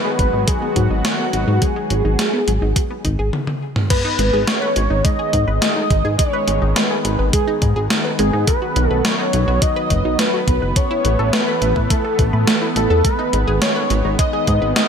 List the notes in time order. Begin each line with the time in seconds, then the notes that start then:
Already playing: D#3 F#3 G#3 B3 F#4 B4
0.05 G#3
0.19 G#1 F#3, kick, closed hi-hat
0.33 G#1 D#4
0.48 F#3 G#4, kick, closed hi-hat
0.62 B3
0.76 G#2 F#3 F#4, kick, closed hi-hat
0.90 G#1 D#4
1.05 F#3 F#4, snare, closed hi-hat
1.19 B3
1.33 G#1 F#3 F#4, closed hi-hat
1.48 G#2 D#4
1.62 F#3 G#4, kick, closed hi-hat
1.76 G#3
1.90 G#1 F#3, closed hi-hat
2.05 G#1 D#4
2.19 F#3, snare, closed hi-hat
2.33 B3
2.48 G#1 F#3, closed hi-hat
2.62 G#1 D#4
2.76 F#3, kick, closed hi-hat
2.90 B3
3.05 G#1 D#4, kick, closed hi-hat
3.19 G#1 G#4
3.33 high tom
3.47 high tom
3.76 mid tom
3.90 D#3 G#3 B3 B4, kick, closed hi-hat, crash
4.05 D#4
4.19 G#1 G#3, closed hi-hat
4.33 G#1 G#4
4.47 G#3 C#5, snare, closed hi-hat
4.62 B4
4.76 G#1 G#3, closed hi-hat
4.90 G#1 D#4
5.04 G#3 D#5, kick, closed hi-hat
5.19 G#4
5.33 G#2 G#3, kick, closed hi-hat
5.48 G#1 B4
5.61 G#3 D#5, snare, closed hi-hat
5.76 D#4
5.90 G#1 G#3, kick, closed hi-hat
6.05 G#2 G#4
6.18 G#3 C#5, kick, closed hi-hat
6.33 B4
6.48 G#1 G#3, closed hi-hat
6.62 G#1 D#4
6.75 G#3 B4, snare, closed hi-hat
6.90 G#4
7.05 G#1 G#3, closed hi-hat
7.19 G#1 B4
7.33 G#3 G#4, kick, closed hi-hat
7.48 D#4
7.62 G#2 G#3, kick, closed hi-hat
7.76 G#1 G#4
7.90 G#3, snare, closed hi-hat
8.05 B4
8.19 G#1 G#3 G#4, closed hi-hat
8.33 G#2 D#4
8.47 F#3 B4, kick, closed hi-hat
8.62 F#4
8.76 B1 F#3, closed hi-hat
8.89 B1 A4 B4
9.05 F#3 C#5, snare, closed hi-hat
9.19 D#4
9.33 B1 F#3, closed hi-hat
9.48 B1 F#4
9.62 F#3 D#5, kick, closed hi-hat
9.76 B4
9.90 F#1 F#3, kick, closed hi-hat
10.05 B1 D#4
10.19 F#3 B4, snare, closed hi-hat
10.34 F#4
10.48 B1 F#3, kick, closed hi-hat
10.62 F#1 B4
10.76 E3 A3 C#5, kick, closed hi-hat
10.91 E4
11.05 A1 A3, closed hi-hat
11.19 A1 A4
11.33 A3 B4, snare, closed hi-hat
11.48 B4
11.62 A1 A3, closed hi-hat
11.76 A1 E4, kick
11.90 A3 A4, kick, closed hi-hat
12.05 A4
12.19 A1 A3, kick, closed hi-hat
12.33 A2 B4
12.47 A3, snare, closed hi-hat
12.62 E4
12.76 A1 A3 A4, closed hi-hat
12.90 E2 A4
13.04 D#3 G#3 B4, kick, closed hi-hat
13.19 D#4
13.33 G#1 G#3, closed hi-hat
13.47 G#1 G#4
13.62 G#3 C#5, snare, closed hi-hat
13.76 B4
13.90 G#1 G#3, closed hi-hat
14.05 G#1 D#4
14.19 G#3 D#5, kick, closed hi-hat
14.33 G#4
14.47 G#2 G#3, kick, closed hi-hat
14.62 G#1 B4
14.76 G#3 D#5, snare, closed hi-hat